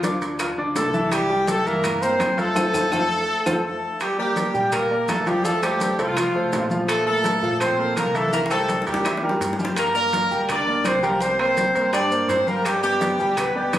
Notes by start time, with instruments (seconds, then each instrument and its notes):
Already playing: upright bass D2, horn section F3 F4
0.03 grand piano D4 D5 D6, high bongo, high conga, high timbale, maracas
0.21 upright bass D2, high bongo, high timbale, maracas
0.39 grand piano F4 F5 F6, high bongo, high conga, high timbale, claves, maracas
0.57 upright bass D2, grand piano D4 D5 D6, high conga
0.75 upright bass C2, horn section A3 A4, high bongo, low bongo, high conga, high timbale, low timbale, maracas
0.93 grand piano E3 E4 E5, high bongo, high conga, maracas
1.11 horn section G3 G4, high bongo, high conga, high timbale, claves, maracas
1.30 grand piano G3 G4 G5, high bongo, high conga
1.47 horn section A3 A4, high bongo, high conga, high timbale, maracas
1.65 upright bass G2, grand piano E3 E4 E5, horn section A#3 A#4, high bongo, high conga, maracas
1.84 high bongo, high conga, low conga, high timbale, claves, maracas
2.01 grand piano A#3 A#4 A#5, horn section C4 C5, high conga, maracas
2.19 upright bass F2, high bongo, low bongo, high conga, high timbale, claves, maracas
2.37 horn section A3 A4, grand piano F4 F5 F6, high bongo, high conga, high timbale, maracas
2.55 upright bass F2, grand piano F4 A4 C5, low bongo, high conga, high timbale, claves, maracas
2.73 upright bass F2, grand piano F4 A4 C5, low bongo, high conga, high timbale, claves, maracas
2.92 upright bass F2, grand piano F4 A4 C5, low bongo, high conga, high timbale, claves, maracas
3.46 upright bass F2, grand piano F4 A4 C5, low bongo, high conga, high timbale, claves, maracas
3.65 horn section A3 A4
4.00 horn section G3 G4, high bongo, high conga, high timbale, claves, maracas
4.18 horn section G3 G4, grand piano A#3 A#4 D5, high bongo, high conga
4.36 grand piano A#3 A#4 D5, high bongo, high conga, high timbale, maracas
4.54 upright bass A#2, grand piano G3 G4 G5, high bongo, high conga, maracas
4.72 horn section A#3 A#4, high bongo, high conga, low conga, high timbale, claves, maracas
4.90 grand piano A#3 A#4 D5, high conga
5.08 upright bass F2, horn section A3 A4, high bongo, low bongo, high conga, high timbale, low timbale, claves, maracas
5.26 grand piano F3 F4 F5, horn section G3 G4, high bongo, high conga, high timbale, maracas
5.44 grand piano F3 F4 F5, horn section A3 A4, high bongo, high conga, maracas
5.62 horn section G3 G4, grand piano A3 A4 C5, high bongo, high conga, high timbale, claves, maracas
5.80 high bongo, high conga, high timbale, maracas
5.98 upright bass C2, horn section F3 F4, grand piano A3 A4 C5, high bongo, high timbale, maracas
6.16 grand piano F3 F4 F5, high bongo, high conga, high timbale, claves, maracas
6.34 upright bass C2, grand piano A3 A4 C5, high conga
6.52 upright bass A#1, high bongo, low bongo, high conga, high timbale, low timbale, maracas
6.70 grand piano F3 F4 F5, high bongo, high conga, maracas
6.88 horn section A3 A4, high bongo, high timbale, claves, maracas
7.06 grand piano A3 A4 A#4, horn section A3 A4, high bongo, high conga
7.24 grand piano A3 A4 A#4, high bongo, high conga, high timbale, maracas
7.42 upright bass A#2, grand piano F3 F4 F5, maracas
7.60 horn section C4 C5, high bongo, high conga, low conga, high timbale, claves, maracas
7.78 grand piano A#3 A4 A#4, high conga
7.96 upright bass C2, horn section A#3 A#4, high bongo, low bongo, high conga, high timbale, claves, maracas
8.14 grand piano E3 E4 E5, horn section A3 A4, high bongo, high conga, high timbale, maracas
8.32 grand piano E3 E4 E5, horn section A#3 A#4, high bongo, maracas
8.46 high bongo
8.50 grand piano G3 G4 C5, horn section A3 A4, high conga, high timbale, claves, maracas
8.69 high conga, high timbale, maracas
8.82 low bongo
8.86 upright bass E2, grand piano G3 G4 A#4, horn section G3 G4, high timbale, maracas
8.94 low bongo
9.05 grand piano E3 E4 E5, low bongo, high conga, high timbale, claves, maracas
9.17 low bongo
9.23 grand piano G3 G4 A#4, high conga
9.29 low bongo
9.40 upright bass G2, low bongo, high conga, high timbale, maracas
9.53 low bongo
9.59 grand piano G3 G4 G5, high conga, maracas
9.65 low bongo
9.77 horn section A#3 A#4, high bongo, high conga, high timbale, claves, maracas
9.95 grand piano A#3 A#4 D5, horn section A#3 A#4, high bongo, high conga, maracas
10.13 grand piano A#3 A#4 D5, high bongo, high conga, high timbale, maracas
10.30 upright bass D2, grand piano G3 G4 G5, high bongo, high conga, maracas
10.49 horn section D4 D5, high bongo, high conga, low conga, high timbale, claves, maracas
10.67 grand piano A#3 A#4 D5, high conga
10.84 upright bass C2, horn section C4 C5, high bongo, low bongo, high conga, high timbale, claves, maracas
11.03 grand piano G3 G4 G5, horn section A#3 A#4, high bongo, high conga, high timbale, maracas
11.20 grand piano G3 G4 G5, horn section C4 C5, high bongo, high conga, maracas
11.39 grand piano A#3 A#4 C5, horn section C4 C5, high bongo, high conga, high timbale, claves
11.57 high bongo, high conga, high timbale, maracas
11.75 upright bass G2, grand piano A#3 A#4 C5, high bongo, high timbale, maracas
11.93 grand piano G3 G4 G5, horn section D4 D5, high bongo, high conga, high timbale, claves, maracas
12.11 grand piano A#3 A#4 C5, high conga, maracas
12.29 upright bass G2, horn section C4 C5, high bongo, low bongo, high conga, high timbale, maracas
12.47 grand piano G3 G4 G5, horn section A#3 A#4, high bongo, high conga, maracas
12.65 horn section G3 G4, high bongo, high conga, high timbale, claves, maracas
12.83 horn section G3 G4, grand piano B3 B4 D5, high bongo, high conga, maracas
13.01 grand piano B3 B4 D5, high bongo, high conga, high timbale, maracas
13.18 upright bass D2, grand piano G3 G4 G5, high bongo, high conga, maracas
13.37 horn section B3 B4, high bongo, high conga, low conga, high timbale, claves, maracas
13.55 horn section G3 G4, grand piano B3 B4 D5, high conga
13.73 upright bass C2, horn section B3 B4, high bongo, low bongo, high conga, high timbale, claves, maracas